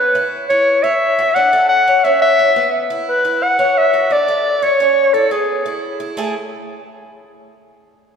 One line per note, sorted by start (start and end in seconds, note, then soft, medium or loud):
0.00 0.14 B3 medium
0.00 0.22 B4 loud
0.15 0.48 E4 medium
0.49 0.83 E4 medium
0.49 0.85 C#5 loud
0.84 1.17 C#5 medium
0.84 1.36 E5 loud
1.19 1.35 F#4 medium
1.35 1.52 D4 medium
1.35 1.68 F#5 loud
1.53 1.86 A4 medium
1.69 2.06 F#5 loud
1.88 2.04 C#5 medium
2.04 2.38 C#4 medium
2.04 2.21 E5 loud
2.22 2.87 E5 loud
2.39 2.56 E4 medium
2.56 2.89 B3 medium
2.90 3.24 E4 medium
3.09 3.45 B4 loud
3.25 3.58 E4 medium
3.43 3.79 F#5 loud
3.59 3.92 C#5 medium
3.78 4.14 E5 loud
3.94 4.10 F#4 medium
4.10 4.27 D4 medium
4.10 4.65 D5 loud
4.28 4.62 A4 medium
4.62 4.79 C#5 medium
4.62 5.15 C#5 loud
4.80 5.13 C#4 medium
5.14 5.31 E4 medium
5.14 5.33 A4 medium
5.31 5.65 B3 medium
5.31 5.83 G#4 medium
5.66 5.99 E4 medium
6.00 6.16 E4 medium
6.17 6.33 A3 loud
6.17 6.33 E4 medium
6.17 6.34 G#4 loud